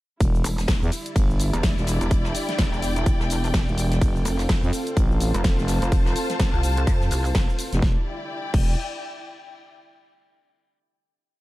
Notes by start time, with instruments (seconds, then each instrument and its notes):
0.20 fm bass E1, analog synth pad D4 G4 E5, string section E4, kick, closed hi-hat, ride, shaker
0.34 closed hi-hat, shaker
0.44 wobble bass E1, closed hi-hat, open hi-hat, shaker
0.58 snare, open hi-hat, shaker
0.68 wobble bass E1, kick, snare, closed hi-hat, open hi-hat, ride, shaker
0.82 fm bass E2, shaker
0.92 closed hi-hat, open hi-hat, shaker
1.00 string section D5
1.06 closed hi-hat, shaker
1.16 fm bass G1, kick, closed hi-hat, ride, shaker
1.30 shaker
1.40 closed hi-hat, open hi-hat, shaker
1.53 wobble bass E1, closed hi-hat, shaker
1.63 kick, snare, closed hi-hat, ride, shaker
1.77 fm bass E1, string section G5, snare, shaker
1.86 snare, closed hi-hat, open hi-hat, shaker
2.01 wobble bass E1, closed hi-hat, shaker
2.11 kick, closed hi-hat, ride, shaker
2.25 snare, shaker
2.34 closed hi-hat, open hi-hat, shaker
2.49 snare, closed hi-hat, shaker
2.58 wobble bass E1, kick, snare, closed hi-hat, ride, shaker
2.73 wobble bass E1, shaker
2.82 closed hi-hat, open hi-hat, shaker
2.96 closed hi-hat, shaker
3.06 kick, closed hi-hat, ride, shaker
3.20 wobble bass E1, snare, shaker
3.29 closed hi-hat, open hi-hat, shaker
3.44 open hi-hat, shaker
3.54 kick, snare, closed hi-hat, ride, shaker
3.68 fm bass E1, shaker
3.78 closed hi-hat, open hi-hat, shaker
3.92 snare, closed hi-hat, shaker
4.01 analog synth pad C4 A4 F5, string section F4, kick, closed hi-hat, ride, shaker
4.15 closed hi-hat, shaker
4.25 wobble bass F1, closed hi-hat, open hi-hat, shaker
4.38 snare, open hi-hat, shaker
4.49 wobble bass F1, string section C5, kick, snare, closed hi-hat, open hi-hat, ride, shaker
4.63 fm bass F2, shaker
4.73 closed hi-hat, open hi-hat, shaker
4.82 string section A5
4.87 closed hi-hat, shaker
4.97 fm bass A1, kick, closed hi-hat, ride, shaker
5.11 shaker
5.20 closed hi-hat, open hi-hat, shaker
5.34 wobble bass F1, closed hi-hat, shaker
5.44 kick, snare, closed hi-hat, ride, shaker
5.58 fm bass F1, snare, shaker
5.67 snare, closed hi-hat, open hi-hat, shaker
5.82 wobble bass F1, closed hi-hat, shaker
5.92 kick, closed hi-hat, ride, shaker
6.06 snare, shaker
6.16 closed hi-hat, open hi-hat, shaker
6.30 snare, closed hi-hat, shaker
6.40 wobble bass F1, kick, snare, closed hi-hat, ride, shaker
6.53 wobble bass C2, shaker
6.63 closed hi-hat, open hi-hat, shaker
6.77 closed hi-hat, shaker
6.87 wobble bass F2, kick, closed hi-hat, ride, shaker
7.01 snare, shaker
7.11 wobble bass C2, closed hi-hat, open hi-hat, shaker
7.25 open hi-hat, shaker
7.35 wobble bass F1, kick, snare, closed hi-hat, ride, shaker
7.49 shaker
7.58 closed hi-hat, open hi-hat, shaker
7.73 fm bass F1, snare, closed hi-hat, shaker
7.82 fm bass E1, analog synth pad D4 G4 E5, string section E4, kick, snare
7.91 string section D5
7.98 string section G5
8.54 fm bass E1, kick, crash